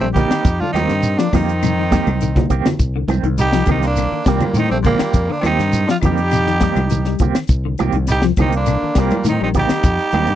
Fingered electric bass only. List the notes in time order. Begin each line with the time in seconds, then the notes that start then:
0.01 A#1
0.45 F2
0.74 D#2
0.89 G2
1.33 F2
2.07 C2
2.51 C2
2.65 muted fingered electric bass stroke
2.79 C2
3.08 C2
3.23 C2
3.66 C2
4.11 muted fingered electric bass stroke
4.26 C2
4.53 A2
4.71 A#1
5.00 muted fingered electric bass stroke
5.14 F2
5.43 D#2
5.59 G2
6.03 F2
6.76 C2
7.20 C2
7.37 muted fingered electric bass stroke
7.49 C2
7.80 C2
7.93 C2
8.37 C2
8.82 muted fingered electric bass stroke
8.96 C2
9.25 A2
9.41 A#1
9.70 muted fingered electric bass stroke
9.84 F2
10.13 D#2
10.28 G2